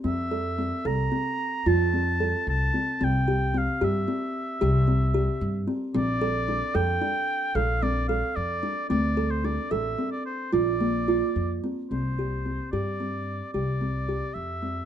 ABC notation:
X:1
M:11/8
L:1/16
Q:1/4=111
K:Cmix
V:1 name="Oboe"
e6 b6 a6 a4 | g4 f2 e12- e2 z2 | d6 g6 f2 d2 f2 d4 | d3 c d2 e3 d c2 d8 z2 |
c6 d6 d6 e4 |]
V:2 name="Kalimba"
C2 A2 C2 A2 C4 F2 C2 A4 C2 | C2 G2 C2 G2 C4 G2 C2 G4 C2 | C2 A2 D2 A2 D4 A2 C2 A4 D2 | C2 A2 D2 A2 C4 F2 B,2 F4 C2 |
C2 G2 C2 G2 C4 G2 C2 G4 C2 |]
V:3 name="Upright bass" clef=bass
F,,6 C,,2 z4 F,,6 C,,2 z2 | C,,6 G,,2 z4 C,,6 G,,2 z2 | B,,,6 F,,2 z4 B,,,6 F,,2 z2 | D,,6 A,,,2 z4 B,,,6 F,,2 z2 |
C,,6 G,,6 C,,6 F,,4 |]